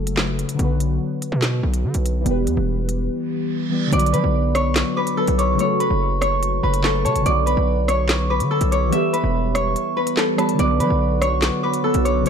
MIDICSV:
0, 0, Header, 1, 8, 480
1, 0, Start_track
1, 0, Key_signature, 2, "minor"
1, 0, Tempo, 416667
1, 682, Time_signature, 4, 2, 24, 8
1, 14163, End_track
2, 0, Start_track
2, 0, Title_t, "Synth bell"
2, 0, Program_c, 0, 98
2, 4763, Note_on_c, 0, 83, 77
2, 5213, Note_off_c, 0, 83, 0
2, 5241, Note_on_c, 0, 85, 86
2, 5693, Note_off_c, 0, 85, 0
2, 5721, Note_on_c, 0, 86, 90
2, 5949, Note_off_c, 0, 86, 0
2, 5961, Note_on_c, 0, 88, 92
2, 6189, Note_off_c, 0, 88, 0
2, 6201, Note_on_c, 0, 86, 79
2, 6429, Note_off_c, 0, 86, 0
2, 6682, Note_on_c, 0, 83, 86
2, 7133, Note_off_c, 0, 83, 0
2, 7162, Note_on_c, 0, 85, 78
2, 7613, Note_off_c, 0, 85, 0
2, 7643, Note_on_c, 0, 83, 81
2, 7870, Note_off_c, 0, 83, 0
2, 7881, Note_on_c, 0, 85, 86
2, 8109, Note_off_c, 0, 85, 0
2, 8123, Note_on_c, 0, 81, 80
2, 8350, Note_off_c, 0, 81, 0
2, 8603, Note_on_c, 0, 83, 83
2, 9053, Note_off_c, 0, 83, 0
2, 9080, Note_on_c, 0, 85, 81
2, 9532, Note_off_c, 0, 85, 0
2, 9561, Note_on_c, 0, 86, 77
2, 9789, Note_off_c, 0, 86, 0
2, 9801, Note_on_c, 0, 88, 83
2, 10029, Note_off_c, 0, 88, 0
2, 10041, Note_on_c, 0, 86, 83
2, 10269, Note_off_c, 0, 86, 0
2, 10519, Note_on_c, 0, 83, 67
2, 10972, Note_off_c, 0, 83, 0
2, 11001, Note_on_c, 0, 85, 85
2, 11452, Note_off_c, 0, 85, 0
2, 11481, Note_on_c, 0, 83, 76
2, 11932, Note_off_c, 0, 83, 0
2, 11959, Note_on_c, 0, 81, 87
2, 12188, Note_off_c, 0, 81, 0
2, 12443, Note_on_c, 0, 83, 77
2, 12894, Note_off_c, 0, 83, 0
2, 12921, Note_on_c, 0, 85, 90
2, 13373, Note_off_c, 0, 85, 0
2, 13401, Note_on_c, 0, 86, 89
2, 13629, Note_off_c, 0, 86, 0
2, 13642, Note_on_c, 0, 88, 89
2, 13870, Note_off_c, 0, 88, 0
2, 13883, Note_on_c, 0, 86, 83
2, 14110, Note_off_c, 0, 86, 0
2, 14163, End_track
3, 0, Start_track
3, 0, Title_t, "Harp"
3, 0, Program_c, 1, 46
3, 4528, Note_on_c, 1, 74, 108
3, 4759, Note_on_c, 1, 71, 76
3, 5240, Note_on_c, 1, 73, 90
3, 5309, Note_off_c, 1, 74, 0
3, 5721, Note_off_c, 1, 71, 0
3, 5726, Note_on_c, 1, 71, 85
3, 5958, Note_on_c, 1, 69, 86
3, 6198, Note_off_c, 1, 73, 0
3, 6202, Note_on_c, 1, 73, 81
3, 6448, Note_off_c, 1, 73, 0
3, 6453, Note_on_c, 1, 73, 97
3, 6678, Note_off_c, 1, 71, 0
3, 6682, Note_on_c, 1, 71, 75
3, 7150, Note_off_c, 1, 73, 0
3, 7155, Note_on_c, 1, 73, 85
3, 7641, Note_off_c, 1, 71, 0
3, 7645, Note_on_c, 1, 71, 81
3, 7875, Note_off_c, 1, 69, 0
3, 7879, Note_on_c, 1, 69, 86
3, 8113, Note_off_c, 1, 73, 0
3, 8118, Note_on_c, 1, 73, 94
3, 8361, Note_on_c, 1, 74, 107
3, 8431, Note_off_c, 1, 73, 0
3, 8590, Note_off_c, 1, 71, 0
3, 8595, Note_on_c, 1, 71, 80
3, 9090, Note_on_c, 1, 73, 83
3, 9159, Note_off_c, 1, 74, 0
3, 9561, Note_off_c, 1, 71, 0
3, 9565, Note_on_c, 1, 71, 80
3, 9796, Note_off_c, 1, 69, 0
3, 9801, Note_on_c, 1, 69, 91
3, 10040, Note_off_c, 1, 73, 0
3, 10045, Note_on_c, 1, 73, 83
3, 10280, Note_on_c, 1, 76, 100
3, 10515, Note_off_c, 1, 71, 0
3, 10520, Note_on_c, 1, 71, 78
3, 10997, Note_off_c, 1, 73, 0
3, 11001, Note_on_c, 1, 73, 82
3, 11479, Note_off_c, 1, 71, 0
3, 11483, Note_on_c, 1, 71, 86
3, 11717, Note_off_c, 1, 69, 0
3, 11721, Note_on_c, 1, 69, 85
3, 11959, Note_off_c, 1, 71, 0
3, 11963, Note_on_c, 1, 71, 84
3, 12207, Note_on_c, 1, 74, 110
3, 12265, Note_off_c, 1, 76, 0
3, 12276, Note_off_c, 1, 73, 0
3, 12434, Note_off_c, 1, 71, 0
3, 12439, Note_on_c, 1, 71, 76
3, 12921, Note_on_c, 1, 73, 88
3, 12990, Note_off_c, 1, 74, 0
3, 13400, Note_off_c, 1, 71, 0
3, 13404, Note_on_c, 1, 71, 86
3, 13633, Note_off_c, 1, 69, 0
3, 13637, Note_on_c, 1, 69, 84
3, 13877, Note_off_c, 1, 73, 0
3, 13882, Note_on_c, 1, 73, 82
3, 14127, Note_off_c, 1, 73, 0
3, 14163, Note_off_c, 1, 69, 0
3, 14163, Note_off_c, 1, 71, 0
3, 14163, End_track
4, 0, Start_track
4, 0, Title_t, "Synth keys"
4, 0, Program_c, 2, 88
4, 0, Control_c, 2, 64, 127
4, 0, Note_on_c, 2, 49, 70
4, 0, Note_on_c, 2, 54, 62
4, 0, Note_on_c, 2, 57, 65
4, 0, Note_on_c, 2, 66, 65
4, 0, Note_on_c, 2, 69, 77
4, 144, Note_off_c, 2, 49, 0
4, 158, Note_off_c, 2, 54, 0
4, 172, Note_on_c, 2, 49, 54
4, 173, Note_off_c, 2, 57, 0
4, 185, Note_on_c, 2, 54, 46
4, 187, Note_off_c, 2, 66, 0
4, 200, Note_on_c, 2, 57, 48
4, 202, Note_off_c, 2, 69, 0
4, 214, Note_on_c, 2, 66, 48
4, 229, Note_on_c, 2, 71, 61
4, 626, Note_on_c, 2, 50, 72
4, 641, Note_off_c, 2, 54, 0
4, 654, Note_on_c, 2, 54, 62
4, 667, Note_off_c, 2, 49, 0
4, 681, Note_off_c, 2, 57, 0
4, 683, Note_on_c, 2, 59, 66
4, 688, Note_off_c, 2, 66, 0
4, 695, Note_off_c, 2, 71, 0
4, 695, Control_c, 2, 64, 0
4, 712, Note_on_c, 2, 66, 62
4, 740, Note_on_c, 2, 71, 75
4, 912, Control_c, 2, 64, 127
4, 2535, Note_off_c, 2, 50, 0
4, 2543, Note_on_c, 2, 52, 70
4, 2549, Note_off_c, 2, 54, 0
4, 2564, Note_off_c, 2, 59, 0
4, 2571, Note_on_c, 2, 55, 65
4, 2579, Note_off_c, 2, 66, 0
4, 2593, Note_off_c, 2, 71, 0
4, 2599, Note_on_c, 2, 59, 67
4, 2618, Control_c, 2, 64, 0
4, 2628, Note_on_c, 2, 67, 63
4, 2657, Note_on_c, 2, 71, 84
4, 2788, Control_c, 2, 64, 127
4, 4218, Note_off_c, 2, 52, 0
4, 4232, Note_off_c, 2, 55, 0
4, 4247, Note_off_c, 2, 59, 0
4, 4252, Note_on_c, 2, 52, 51
4, 4261, Note_off_c, 2, 67, 0
4, 4266, Note_on_c, 2, 55, 47
4, 4276, Note_off_c, 2, 71, 0
4, 4280, Note_on_c, 2, 59, 51
4, 4295, Note_on_c, 2, 67, 49
4, 4309, Note_on_c, 2, 74, 53
4, 4462, Note_on_c, 2, 50, 77
4, 4491, Note_on_c, 2, 54, 68
4, 4505, Note_off_c, 2, 59, 0
4, 4507, Note_off_c, 2, 52, 0
4, 4514, Note_off_c, 2, 55, 0
4, 4519, Note_on_c, 2, 59, 68
4, 4528, Note_off_c, 2, 67, 0
4, 4534, Control_c, 2, 64, 0
4, 4535, Note_off_c, 2, 74, 0
4, 4547, Note_on_c, 2, 66, 62
4, 4576, Note_on_c, 2, 71, 79
4, 4708, Control_c, 2, 64, 127
4, 5902, Note_off_c, 2, 50, 0
4, 5917, Note_off_c, 2, 54, 0
4, 5932, Note_off_c, 2, 59, 0
4, 5935, Note_on_c, 2, 50, 51
4, 5946, Note_off_c, 2, 66, 0
4, 5949, Note_on_c, 2, 54, 49
4, 5961, Note_off_c, 2, 71, 0
4, 5964, Note_on_c, 2, 59, 49
4, 5978, Note_on_c, 2, 66, 49
4, 5992, Note_on_c, 2, 71, 62
4, 6384, Note_on_c, 2, 49, 75
4, 6399, Note_off_c, 2, 54, 0
4, 6412, Note_on_c, 2, 54, 62
4, 6428, Note_off_c, 2, 50, 0
4, 6441, Note_on_c, 2, 57, 66
4, 6443, Note_off_c, 2, 59, 0
4, 6450, Note_off_c, 2, 66, 0
4, 6457, Note_off_c, 2, 71, 0
4, 6458, Control_c, 2, 64, 0
4, 6470, Note_on_c, 2, 66, 67
4, 6498, Note_on_c, 2, 69, 78
4, 6680, Control_c, 2, 64, 127
4, 7823, Note_off_c, 2, 49, 0
4, 7838, Note_off_c, 2, 54, 0
4, 7852, Note_on_c, 2, 49, 53
4, 7853, Note_off_c, 2, 57, 0
4, 7866, Note_on_c, 2, 54, 48
4, 7867, Note_off_c, 2, 66, 0
4, 7880, Note_on_c, 2, 57, 50
4, 7882, Note_off_c, 2, 69, 0
4, 7894, Note_on_c, 2, 66, 48
4, 7908, Note_on_c, 2, 71, 62
4, 8306, Note_on_c, 2, 50, 74
4, 8321, Note_off_c, 2, 54, 0
4, 8335, Note_on_c, 2, 54, 62
4, 8347, Note_off_c, 2, 49, 0
4, 8361, Note_off_c, 2, 57, 0
4, 8363, Note_on_c, 2, 59, 64
4, 8368, Note_off_c, 2, 66, 0
4, 8375, Note_off_c, 2, 71, 0
4, 8376, Control_c, 2, 64, 0
4, 8392, Note_on_c, 2, 66, 64
4, 8420, Note_on_c, 2, 71, 81
4, 8611, Control_c, 2, 64, 127
4, 10215, Note_off_c, 2, 50, 0
4, 10223, Note_on_c, 2, 52, 71
4, 10229, Note_off_c, 2, 54, 0
4, 10244, Note_off_c, 2, 59, 0
4, 10251, Note_on_c, 2, 55, 66
4, 10259, Note_off_c, 2, 66, 0
4, 10273, Note_off_c, 2, 71, 0
4, 10280, Note_on_c, 2, 59, 69
4, 10298, Control_c, 2, 64, 0
4, 10308, Note_on_c, 2, 67, 65
4, 10337, Note_on_c, 2, 71, 85
4, 10498, Control_c, 2, 64, 127
4, 11898, Note_off_c, 2, 52, 0
4, 11912, Note_off_c, 2, 55, 0
4, 11927, Note_off_c, 2, 59, 0
4, 11931, Note_on_c, 2, 52, 51
4, 11942, Note_off_c, 2, 67, 0
4, 11945, Note_on_c, 2, 55, 46
4, 11956, Note_off_c, 2, 71, 0
4, 11959, Note_on_c, 2, 59, 52
4, 11974, Note_on_c, 2, 67, 52
4, 11988, Note_on_c, 2, 74, 57
4, 12141, Note_on_c, 2, 50, 73
4, 12170, Note_on_c, 2, 54, 69
4, 12185, Note_off_c, 2, 59, 0
4, 12186, Note_off_c, 2, 52, 0
4, 12193, Note_off_c, 2, 55, 0
4, 12199, Note_on_c, 2, 59, 71
4, 12208, Note_off_c, 2, 67, 0
4, 12215, Note_off_c, 2, 74, 0
4, 12218, Control_c, 2, 64, 0
4, 12227, Note_on_c, 2, 66, 63
4, 12255, Note_on_c, 2, 71, 80
4, 12429, Control_c, 2, 64, 127
4, 13582, Note_off_c, 2, 50, 0
4, 13597, Note_off_c, 2, 54, 0
4, 13611, Note_off_c, 2, 59, 0
4, 13615, Note_on_c, 2, 50, 51
4, 13625, Note_off_c, 2, 66, 0
4, 13629, Note_on_c, 2, 54, 49
4, 13640, Note_off_c, 2, 71, 0
4, 13643, Note_on_c, 2, 59, 49
4, 13657, Note_on_c, 2, 66, 50
4, 13672, Note_on_c, 2, 71, 63
4, 14064, Note_on_c, 2, 49, 74
4, 14078, Note_off_c, 2, 54, 0
4, 14092, Note_on_c, 2, 54, 64
4, 14108, Note_off_c, 2, 50, 0
4, 14121, Note_on_c, 2, 57, 63
4, 14122, Note_off_c, 2, 59, 0
4, 14129, Note_off_c, 2, 66, 0
4, 14137, Note_off_c, 2, 71, 0
4, 14139, Control_c, 2, 64, 0
4, 14163, Note_off_c, 2, 49, 0
4, 14163, Note_off_c, 2, 54, 0
4, 14163, Note_off_c, 2, 57, 0
4, 14163, End_track
5, 0, Start_track
5, 0, Title_t, "Brass ensemble"
5, 0, Program_c, 3, 61
5, 12201, Note_on_c, 3, 50, 80
5, 12201, Note_on_c, 3, 54, 75
5, 12201, Note_on_c, 3, 59, 73
5, 12202, Note_on_c, 3, 66, 90
5, 14102, Note_off_c, 3, 50, 0
5, 14102, Note_off_c, 3, 54, 0
5, 14102, Note_off_c, 3, 59, 0
5, 14122, Note_on_c, 3, 49, 83
5, 14122, Note_on_c, 3, 54, 75
5, 14122, Note_on_c, 3, 57, 74
5, 14163, Note_off_c, 3, 49, 0
5, 14163, Note_off_c, 3, 54, 0
5, 14163, Note_off_c, 3, 57, 0
5, 14163, Note_off_c, 3, 66, 0
5, 14163, End_track
6, 0, Start_track
6, 0, Title_t, "808-style bass"
6, 0, Program_c, 4, 38
6, 0, Note_on_c, 4, 30, 97
6, 515, Note_off_c, 4, 30, 0
6, 682, Note_on_c, 4, 35, 108
6, 1142, Note_off_c, 4, 35, 0
6, 1521, Note_on_c, 4, 47, 99
6, 1867, Note_off_c, 4, 47, 0
6, 1881, Note_on_c, 4, 35, 111
6, 2121, Note_on_c, 4, 50, 100
6, 2138, Note_off_c, 4, 35, 0
6, 2235, Note_off_c, 4, 50, 0
6, 2241, Note_on_c, 4, 35, 100
6, 2587, Note_off_c, 4, 35, 0
6, 2601, Note_on_c, 4, 28, 110
6, 2842, Note_on_c, 4, 40, 94
6, 2859, Note_off_c, 4, 28, 0
6, 2956, Note_off_c, 4, 40, 0
6, 2962, Note_on_c, 4, 28, 103
6, 3562, Note_off_c, 4, 28, 0
6, 4522, Note_on_c, 4, 35, 111
6, 4763, Note_on_c, 4, 54, 97
6, 4780, Note_off_c, 4, 35, 0
6, 4876, Note_off_c, 4, 54, 0
6, 4883, Note_on_c, 4, 35, 100
6, 5573, Note_off_c, 4, 35, 0
6, 6082, Note_on_c, 4, 35, 101
6, 6427, Note_off_c, 4, 35, 0
6, 6802, Note_on_c, 4, 30, 100
6, 7608, Note_off_c, 4, 30, 0
6, 7642, Note_on_c, 4, 30, 107
6, 8122, Note_on_c, 4, 49, 104
6, 8139, Note_off_c, 4, 30, 0
6, 8242, Note_on_c, 4, 30, 100
6, 8259, Note_off_c, 4, 49, 0
6, 8356, Note_off_c, 4, 30, 0
6, 8362, Note_on_c, 4, 35, 114
6, 8707, Note_off_c, 4, 35, 0
6, 8721, Note_on_c, 4, 35, 106
6, 9682, Note_on_c, 4, 50, 100
6, 9699, Note_off_c, 4, 35, 0
6, 9910, Note_off_c, 4, 50, 0
6, 9921, Note_on_c, 4, 35, 107
6, 10267, Note_off_c, 4, 35, 0
6, 10641, Note_on_c, 4, 28, 106
6, 11241, Note_off_c, 4, 28, 0
6, 12201, Note_on_c, 4, 35, 107
6, 12441, Note_on_c, 4, 54, 97
6, 12458, Note_off_c, 4, 35, 0
6, 12555, Note_off_c, 4, 54, 0
6, 12561, Note_on_c, 4, 35, 100
6, 13252, Note_off_c, 4, 35, 0
6, 13761, Note_on_c, 4, 35, 102
6, 14107, Note_off_c, 4, 35, 0
6, 14163, End_track
7, 0, Start_track
7, 0, Title_t, "Reverse cymbal"
7, 0, Program_c, 5, 119
7, 3562, Note_on_c, 5, 60, 86
7, 4522, Note_off_c, 5, 60, 0
7, 14163, End_track
8, 0, Start_track
8, 0, Title_t, "Drums"
8, 79, Note_on_c, 9, 42, 80
8, 195, Note_off_c, 9, 42, 0
8, 199, Note_on_c, 9, 39, 90
8, 201, Note_on_c, 9, 38, 114
8, 314, Note_off_c, 9, 39, 0
8, 316, Note_off_c, 9, 38, 0
8, 448, Note_on_c, 9, 42, 82
8, 563, Note_off_c, 9, 42, 0
8, 563, Note_on_c, 9, 42, 84
8, 678, Note_off_c, 9, 42, 0
8, 682, Note_on_c, 9, 42, 75
8, 797, Note_off_c, 9, 42, 0
8, 926, Note_on_c, 9, 42, 80
8, 1041, Note_off_c, 9, 42, 0
8, 1407, Note_on_c, 9, 42, 86
8, 1522, Note_off_c, 9, 42, 0
8, 1638, Note_on_c, 9, 39, 90
8, 1641, Note_on_c, 9, 38, 114
8, 1643, Note_on_c, 9, 42, 85
8, 1754, Note_off_c, 9, 39, 0
8, 1756, Note_off_c, 9, 38, 0
8, 1758, Note_off_c, 9, 42, 0
8, 2000, Note_on_c, 9, 42, 81
8, 2115, Note_off_c, 9, 42, 0
8, 2237, Note_on_c, 9, 42, 83
8, 2352, Note_off_c, 9, 42, 0
8, 2368, Note_on_c, 9, 42, 84
8, 2483, Note_off_c, 9, 42, 0
8, 2602, Note_on_c, 9, 42, 74
8, 2717, Note_off_c, 9, 42, 0
8, 2846, Note_on_c, 9, 42, 77
8, 2961, Note_off_c, 9, 42, 0
8, 3326, Note_on_c, 9, 42, 88
8, 3441, Note_off_c, 9, 42, 0
8, 4522, Note_on_c, 9, 42, 78
8, 4602, Note_off_c, 9, 42, 0
8, 4602, Note_on_c, 9, 42, 80
8, 4682, Note_off_c, 9, 42, 0
8, 4682, Note_on_c, 9, 42, 90
8, 4766, Note_off_c, 9, 42, 0
8, 4766, Note_on_c, 9, 42, 82
8, 4881, Note_off_c, 9, 42, 0
8, 5241, Note_on_c, 9, 37, 107
8, 5247, Note_on_c, 9, 42, 90
8, 5356, Note_off_c, 9, 37, 0
8, 5362, Note_off_c, 9, 42, 0
8, 5479, Note_on_c, 9, 39, 93
8, 5481, Note_on_c, 9, 38, 118
8, 5483, Note_on_c, 9, 42, 83
8, 5594, Note_off_c, 9, 39, 0
8, 5596, Note_off_c, 9, 38, 0
8, 5598, Note_off_c, 9, 42, 0
8, 5839, Note_on_c, 9, 42, 81
8, 5954, Note_off_c, 9, 42, 0
8, 6077, Note_on_c, 9, 42, 88
8, 6192, Note_off_c, 9, 42, 0
8, 6208, Note_on_c, 9, 42, 87
8, 6323, Note_off_c, 9, 42, 0
8, 6442, Note_on_c, 9, 42, 81
8, 6557, Note_off_c, 9, 42, 0
8, 6686, Note_on_c, 9, 42, 77
8, 6801, Note_off_c, 9, 42, 0
8, 7161, Note_on_c, 9, 37, 106
8, 7166, Note_on_c, 9, 42, 91
8, 7276, Note_off_c, 9, 37, 0
8, 7282, Note_off_c, 9, 42, 0
8, 7403, Note_on_c, 9, 42, 84
8, 7518, Note_off_c, 9, 42, 0
8, 7760, Note_on_c, 9, 42, 81
8, 7875, Note_off_c, 9, 42, 0
8, 7879, Note_on_c, 9, 39, 93
8, 7881, Note_on_c, 9, 38, 118
8, 7994, Note_off_c, 9, 39, 0
8, 7996, Note_off_c, 9, 38, 0
8, 8129, Note_on_c, 9, 42, 84
8, 8243, Note_off_c, 9, 42, 0
8, 8243, Note_on_c, 9, 42, 84
8, 8359, Note_off_c, 9, 42, 0
8, 8362, Note_on_c, 9, 42, 79
8, 8477, Note_off_c, 9, 42, 0
8, 8606, Note_on_c, 9, 42, 81
8, 8721, Note_off_c, 9, 42, 0
8, 9081, Note_on_c, 9, 37, 105
8, 9087, Note_on_c, 9, 42, 92
8, 9196, Note_off_c, 9, 37, 0
8, 9202, Note_off_c, 9, 42, 0
8, 9319, Note_on_c, 9, 39, 94
8, 9322, Note_on_c, 9, 38, 116
8, 9324, Note_on_c, 9, 42, 82
8, 9435, Note_off_c, 9, 39, 0
8, 9437, Note_off_c, 9, 38, 0
8, 9439, Note_off_c, 9, 42, 0
8, 9680, Note_on_c, 9, 42, 84
8, 9795, Note_off_c, 9, 42, 0
8, 9917, Note_on_c, 9, 42, 84
8, 10032, Note_off_c, 9, 42, 0
8, 10048, Note_on_c, 9, 42, 85
8, 10164, Note_off_c, 9, 42, 0
8, 10282, Note_on_c, 9, 42, 76
8, 10397, Note_off_c, 9, 42, 0
8, 10526, Note_on_c, 9, 42, 79
8, 10641, Note_off_c, 9, 42, 0
8, 11001, Note_on_c, 9, 37, 105
8, 11006, Note_on_c, 9, 42, 89
8, 11116, Note_off_c, 9, 37, 0
8, 11122, Note_off_c, 9, 42, 0
8, 11243, Note_on_c, 9, 42, 86
8, 11358, Note_off_c, 9, 42, 0
8, 11599, Note_on_c, 9, 42, 83
8, 11714, Note_off_c, 9, 42, 0
8, 11718, Note_on_c, 9, 39, 90
8, 11720, Note_on_c, 9, 38, 117
8, 11833, Note_off_c, 9, 39, 0
8, 11835, Note_off_c, 9, 38, 0
8, 11962, Note_on_c, 9, 37, 103
8, 11968, Note_on_c, 9, 42, 83
8, 12077, Note_off_c, 9, 37, 0
8, 12083, Note_off_c, 9, 42, 0
8, 12083, Note_on_c, 9, 42, 85
8, 12198, Note_off_c, 9, 42, 0
8, 12201, Note_on_c, 9, 42, 79
8, 12316, Note_off_c, 9, 42, 0
8, 12445, Note_on_c, 9, 42, 78
8, 12560, Note_off_c, 9, 42, 0
8, 12920, Note_on_c, 9, 37, 104
8, 12926, Note_on_c, 9, 42, 91
8, 13036, Note_off_c, 9, 37, 0
8, 13041, Note_off_c, 9, 42, 0
8, 13158, Note_on_c, 9, 39, 93
8, 13160, Note_on_c, 9, 38, 115
8, 13162, Note_on_c, 9, 42, 83
8, 13273, Note_off_c, 9, 39, 0
8, 13275, Note_off_c, 9, 38, 0
8, 13277, Note_off_c, 9, 42, 0
8, 13519, Note_on_c, 9, 42, 82
8, 13634, Note_off_c, 9, 42, 0
8, 13756, Note_on_c, 9, 42, 85
8, 13871, Note_off_c, 9, 42, 0
8, 13888, Note_on_c, 9, 42, 82
8, 14003, Note_off_c, 9, 42, 0
8, 14121, Note_on_c, 9, 42, 77
8, 14163, Note_off_c, 9, 42, 0
8, 14163, End_track
0, 0, End_of_file